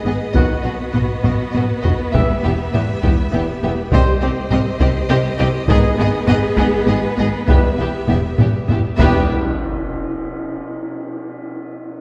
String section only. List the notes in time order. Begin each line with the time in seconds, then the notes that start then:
Already playing: B3 G#4 B4 D#5
0.36 F#4
2.15 G4 E5
3.92 G3 C5 D#5
5.68 B3 G#4 B4
7.48 G4 E5
8.97 B3 G4 B4 E5